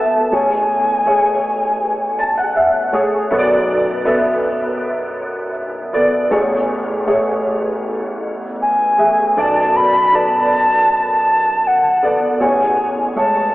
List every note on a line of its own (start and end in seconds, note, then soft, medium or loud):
0.00 0.28 B1 medium
0.00 0.28 F#2 medium
0.00 0.34 B3 medium
0.00 0.34 A4 medium
0.00 0.33 E5 medium
0.00 0.35 A5 medium
0.31 3.27 A1 medium
0.31 3.27 E2 medium
0.31 1.03 A3 medium
0.31 1.03 G#4 medium
0.31 1.03 C#5 medium
0.31 2.57 G#5 medium
1.06 2.48 A3 medium
1.06 2.48 G#4 medium
1.06 2.49 C#5 medium
2.19 2.36 A5 medium
2.37 2.55 F#5 medium
2.56 2.91 E5 medium
2.93 3.29 A3 medium
2.93 3.29 G#4 medium
2.93 3.29 C#5 medium
3.31 6.28 B1 medium
3.31 6.28 F#2 medium
3.31 4.02 B3 medium
3.31 4.02 A4 medium
3.31 3.38 C#5 medium
3.39 4.06 D5 medium
4.05 5.48 B3 medium
4.05 5.49 A4 medium
4.05 5.49 E5 medium
5.93 6.29 B3 medium
5.93 6.30 A4 medium
5.93 6.30 D5 medium
6.30 9.32 A1 medium
6.30 9.32 E2 medium
6.30 7.03 A3 medium
6.30 7.03 G#4 medium
6.30 7.04 C#5 medium
7.07 8.52 A3 medium
7.07 8.52 G#4 medium
7.07 8.53 C#5 medium
8.61 9.40 G#5 medium
8.98 9.34 A3 medium
8.98 9.35 G#4 medium
8.98 9.35 E5 medium
9.37 12.37 B1 medium
9.37 12.37 F#2 medium
9.37 10.09 B3 medium
9.37 10.09 A4 medium
9.37 10.10 D5 medium
9.37 9.78 A5 medium
9.76 10.16 B5 loud
10.12 11.57 B3 medium
10.12 11.58 A4 medium
10.12 11.58 D5 medium
10.12 10.90 A5 medium
10.92 11.68 A5 loud
11.67 12.44 F#5 medium
12.03 12.39 B3 medium
12.03 12.39 A4 medium
12.03 12.39 D5 medium
12.40 13.55 A1 medium
12.40 13.55 E2 medium
12.40 13.12 A3 medium
12.40 13.12 G#4 medium
12.40 13.12 C#5 medium
12.40 12.90 G#5 medium
13.15 13.55 G#3 medium
13.15 13.55 A3 medium
13.15 13.55 C#5 medium
13.15 13.55 A5 medium